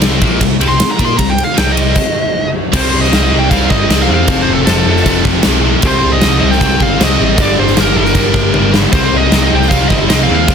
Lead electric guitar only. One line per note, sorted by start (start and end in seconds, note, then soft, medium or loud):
0.68 0.91 C6 loud
0.91 1.04 A#5 loud
1.05 1.17 C6 medium
1.17 1.30 A#5 medium
1.30 1.43 G5 medium
1.44 1.58 F5 medium
1.58 1.70 G5 medium
1.72 2.46 D#5 loud
2.77 2.89 C5 loud
2.90 3.00 C5 medium
3.00 3.25 D#5 medium
3.26 3.38 D#5 loud
3.39 3.50 G5 loud
3.50 3.70 F5 loud
3.70 3.88 D#5 loud
3.90 4.02 D#5 medium
4.02 4.07 F5 loud
4.14 4.41 F5 medium
4.42 4.53 C5 medium
4.53 4.65 A4 medium
4.66 5.21 A4 medium
5.87 5.98 C5 loud
5.99 6.12 C5 medium
6.12 6.36 D#5 loud
6.40 6.49 D#5 loud
6.51 6.80 G5 loud
6.83 6.99 F5 loud
7.03 7.40 D#5 loud
7.41 7.59 D5 loud
7.59 7.78 C5 medium
7.79 7.96 A#4 medium
7.97 8.70 A#4 medium
8.92 9.03 C5 medium
9.05 9.17 C5 medium
9.17 9.42 D#5 medium
9.43 9.56 D#5 medium
9.55 9.69 G5 loud
9.69 9.88 F5 loud
9.88 9.93 D#5 medium
10.09 10.22 D#5 loud
10.23 10.34 F5 loud
10.36 10.55 F5 medium